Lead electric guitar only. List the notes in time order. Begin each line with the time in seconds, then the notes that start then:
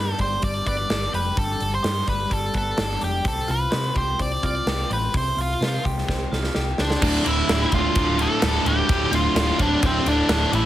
Already playing: B4
0.21 C5
0.44 D5
0.67 D5
1.15 B4
1.38 A4
1.75 C5
2.09 B4
2.32 A4
2.57 A4
3.04 G4
3.28 A4
3.51 B4
3.97 C5
4.22 D5
4.46 D5
4.93 B4
5.17 C5
5.41 F4
6.80 D4 D5
7.27 E4 E5
7.74 F4 F5
8.22 A4 A5
8.67 G4 G5
9.14 F4 F5
9.61 D4 D5
9.85 C4 C5
10.08 D4 D5
10.55 E4 E5